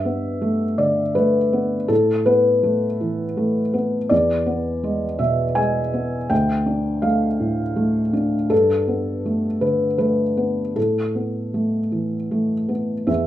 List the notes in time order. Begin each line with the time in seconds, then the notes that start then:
Already playing: G2 E5
0.05 B3
0.41 A3
0.78 D3 D5
1.15 A3 B4
1.53 B3
1.88 A2 A4
2.26 B3 B4
2.63 A3
3.01 E3
3.37 A3
3.74 B3
4.09 E2 D5
4.46 B3
4.84 G#3
5.19 B2 E5
5.55 G#3 G#5
5.94 B3
6.30 D2 G5
6.66 D4
7.02 A3 F5
7.40 A2
7.76 A3
8.13 D4
8.50 G2 A4
8.88 B3
9.26 A3
9.61 D3 B4
9.98 A3 B4
10.37 B3
10.76 A2 A4
11.15 B3
11.54 A3
11.92 E3
12.31 A3
12.69 B3
13.07 E2 E5